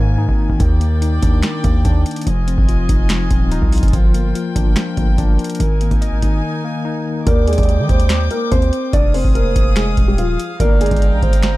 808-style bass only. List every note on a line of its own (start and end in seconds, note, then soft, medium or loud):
0.00 0.27 G#2 loud
0.29 0.49 G#1 loud
0.50 0.59 G#1 loud
0.60 1.20 D#2 loud
1.23 1.43 D#2 loud
1.64 1.84 D#2 loud
1.85 2.05 D#2 loud
2.27 2.57 F1 loud
2.58 2.88 F1 loud
2.89 3.29 F1 loud
3.31 3.61 D#1 loud
3.62 3.82 C2 loud
3.83 3.93 F1 loud
3.93 4.33 G1 loud
4.56 4.76 G1 loud
4.97 5.17 G1 loud
5.18 5.38 G1 loud
5.60 5.90 G#1 loud
5.91 6.21 G#1 loud
6.23 6.42 G#1 loud
7.27 7.57 D#2 loud
7.58 7.80 D#2 loud
7.79 7.89 D#3 loud
7.89 8.29 D#2 loud
8.52 8.72 D#2 loud
8.93 9.23 F1 loud
9.25 9.55 F1 loud
9.56 9.96 F1 loud
9.97 10.37 D#1 loud
10.60 10.90 G1 loud
10.91 11.13 G1 loud
11.12 11.22 A#1 loud
11.23 11.57 G1 loud